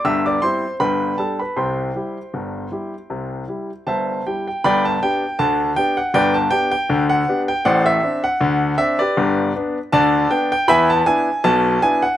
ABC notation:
X:1
M:2/4
L:1/16
Q:"Swing 16ths" 1/4=79
K:C
V:1 name="Grand piano"
[ee'] [dd'] [cc']2 [Bgb]2 [Aa] [Bb] | [cgc']8- | [cgc']4 [cea]2 g g | [K:G] [dgb] a g2 a2 g f |
[Bdg] a g g2 f2 g | [cdf] e2 f3 e [GBd]- | [GBd]2 z2 [da]2 g g | [e^gb] a g2 a2 g f |]
V:2 name="Grand piano"
[G,,,G,,]2 [G,CE]2 [G,,,G,,]2 [G,DG]2 | [C,,C,]2 [G,EG]2 [G,,,G,,]2 [G,EG]2 | [C,,C,]2 [G,EG]2 [G,,,G,,]2 [G,EG]2 | [K:G] [G,,,G,,]2 [B,DG]2 [D,,D,]2 [B,DG]2 |
[G,,,G,,]2 [B,DG]2 [D,,D,]2 [B,DG]2 | [A,,,A,,]2 [CD]2 [D,,D,]2 [CD]2 | [G,,,G,,]2 [B,D]2 [D,,D,]2 [B,D]2 | [E,,E,]2 [B,DE]2 [B,,,B,,]2 [B,DE]2 |]